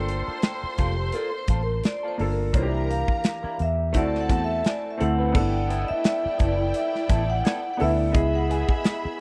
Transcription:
Already playing: G1 A#3 D4 F4 A4 C5 G5 C6
0.09 muted clean electric guitar stroke, closed hi-hat
0.28 A#3 F4 A4, muted fingered electric bass stroke
0.42 G5, snare, closed hi-hat
0.62 muted clean electric guitar stroke, muted fingered electric bass stroke
0.78 F1 A#3 F4 G4 A4, kick, closed hi-hat
0.99 muted clean electric guitar stroke
1.12 A#3 F4 A4 A#4, closed hi-hat
1.33 muted clean electric guitar stroke
1.38 C5
1.48 A1 A#3 F4 A4, kick, closed hi-hat
1.63 A#4
1.68 muted clean electric guitar stroke
1.84 D5, muted clean electric guitar stroke, snare, closed hi-hat
2.03 A#3 F4 A4
2.08 C5
2.18 G1 A#3 D4 F4 A4, muted clean electric guitar stroke, open hi-hat
2.32 A#4
2.39 muted clean electric guitar stroke
2.53 C2 E3 A#3 C#4 D4 D#4 F4 A4 A#4 C5 A#5, kick, closed hi-hat
2.63 G4
2.68 D4 E4 A#4
2.91 F5, closed hi-hat
3.08 muted clean electric guitar stroke, muted fingered electric bass stroke, kick
3.24 muted clean electric guitar stroke, snare, closed hi-hat
3.43 D4 E4 A#4, muted fingered electric bass stroke
3.59 E2 E5, muted clean electric guitar stroke, closed hi-hat
3.78 muted clean electric guitar stroke
3.93 D2 A3 C4 E4 F#4 A4 D5 A5, muted clean electric guitar stroke, kick, closed hi-hat
4.15 snare
4.21 F#5
4.29 E2 C4 F#4 A4 F#5, kick, closed hi-hat
4.44 E5, muted clean electric guitar stroke
4.64 D5 G#5, muted clean electric guitar stroke, snare, closed hi-hat
4.84 muted clean electric guitar stroke
4.90 E5
4.98 D2 A3 C4 E4 A4 F#5, closed hi-hat
5.18 C4 F#4 B4
5.32 G1 B3 D4 E4 A4 D5 G5, kick, crash
5.69 B3 E4 A4, closed hi-hat
5.82 D#5
5.88 E5, muted fingered electric bass stroke
6.04 muted clean electric guitar stroke, snare, closed hi-hat
6.22 muted clean electric guitar stroke, muted fingered electric bass stroke
6.38 F#1 B3 E4 A4 D5, kick, closed hi-hat
6.74 E5, closed hi-hat
6.92 muted clean electric guitar stroke, snare
7.08 A1 B3 E4 A4, kick, closed hi-hat
7.28 F#5, muted clean electric guitar stroke
7.44 B3 E4 A4, snare, closed hi-hat
7.65 muted clean electric guitar stroke
7.74 B3 F#5
7.78 D2 B3 D4 E4 A4 B4, open hi-hat
7.82 E5
8.12 C#2 B3 E4 G#4 D#5 E5 B5, kick, closed hi-hat
8.35 F#5
8.49 B3 E4 G#4, closed hi-hat
8.69 G#5, muted fingered electric bass stroke, kick
8.84 muted clean electric guitar stroke, snare, closed hi-hat
9.03 muted clean electric guitar stroke, muted fingered electric bass stroke

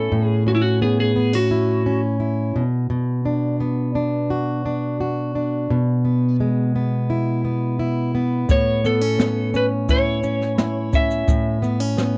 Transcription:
Already playing: A2 B3 C#4 E4 A4
0.12 A2
0.24 G#4
0.46 C#4 F#4
0.55 E4
0.62 F#4
0.82 B3 G#4
1.00 G#4
1.16 B3
1.33 C#4 F#4
1.51 E4
1.86 C#4
2.20 E4
2.56 B2
2.90 B2
3.25 D4
3.60 B3
3.95 D4
4.30 F#4
4.66 D4
5.01 F#4
5.35 D4
5.70 B2
6.05 B3
6.40 G#3
6.76 B3
7.10 E4
7.45 B3
7.79 E4
8.15 B3
8.49 A2 C#5, kick, shaker
8.84 B3 A4, shaker
9.01 C#4
9.19 B3, snare, shaker
9.54 C#4 B4, shaker
9.89 E4 C#5, kick, shaker
10.23 C#4, shaker
10.41 snare
10.58 E4, snare, shaker
10.93 C#4 E5, kick, shaker
11.11 shaker
11.28 A2, kick, shaker
11.62 B3, shaker
11.80 C#4
11.97 B3, snare, shaker

